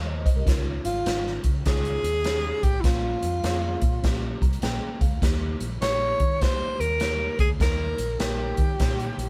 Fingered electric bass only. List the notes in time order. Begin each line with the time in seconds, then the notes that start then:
Already playing: D#2
0.36 C2
0.47 C#2
0.85 G#1
1.06 G#1
1.45 C#3
1.66 C#2
2.03 D#2
2.63 A1
2.84 A#1
3.23 F2
3.44 F2
3.82 A#2
4.04 A#1
4.42 C2
4.63 A#1
5.01 C#2
5.12 D2
5.22 D#2
5.61 A#1
5.82 A#1
6.20 D#3
6.61 muted fingered electric bass stroke
6.80 D#2
7.39 D2
7.60 D#2
7.99 A#1
8.20 A#1
8.58 D#3
8.80 A#2
9.18 A#1